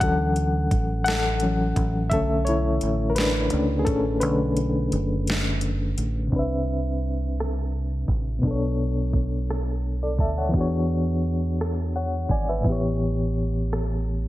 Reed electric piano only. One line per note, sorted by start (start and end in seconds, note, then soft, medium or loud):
0.00 0.48 E3 medium
0.00 0.49 F#3 soft
0.00 0.49 C#4 medium
0.00 1.04 A4 medium
0.00 1.02 F#5 loud
1.04 1.82 A4 medium
1.04 1.80 F#5 loud
1.42 1.73 E3 soft
1.42 1.74 F#3 soft
1.42 1.74 C#4 medium
2.10 3.13 D3 medium
2.10 3.13 A3 soft
2.10 3.14 C#4 medium
2.10 2.45 A4 medium
2.10 2.47 E5 loud
2.45 3.07 E4 medium
2.45 3.11 C#5 loud
3.10 3.17 A#4 medium
3.15 3.51 D4 medium
3.15 3.81 B4 medium
3.52 3.84 A3 medium
3.52 3.84 C#4 medium
3.52 3.84 D4 medium
3.79 3.87 G#4 medium
3.85 4.04 C#4 medium
3.85 4.01 A4 medium
4.20 6.29 D3 medium
4.20 6.29 A3 medium
4.20 6.29 C#4 medium
4.20 5.94 D4 medium
4.20 5.93 B4 medium
6.27 8.36 C3 medium
6.27 8.38 C4 medium
6.33 8.39 D4 medium
6.33 8.41 B4 medium
6.39 8.42 E5 medium
8.39 10.47 B2 medium
8.39 10.49 B3 medium
8.45 10.50 D4 medium
8.45 9.83 A4 medium
8.51 9.85 C#5 medium
10.03 10.19 A4 medium
10.03 10.19 D5 medium
10.20 10.36 E5 medium
10.20 10.36 A5 medium
10.38 10.59 C#5 medium
10.38 10.70 F#5 medium
10.49 12.58 E3 medium
10.49 12.59 B3 medium
10.53 12.60 D4 medium
10.53 12.61 F#4 medium
10.58 12.63 G#4 medium
10.58 11.95 C#5 medium
11.96 12.29 C#5 medium
11.96 12.28 F#5 medium
12.31 12.47 D5 medium
12.31 12.47 G#5 medium
12.49 12.81 B4 medium
12.49 12.81 E5 medium
12.60 14.28 A2 medium
12.60 14.28 E3 medium
12.66 14.28 B3 medium
12.66 14.28 G4 medium
12.72 14.28 C#5 medium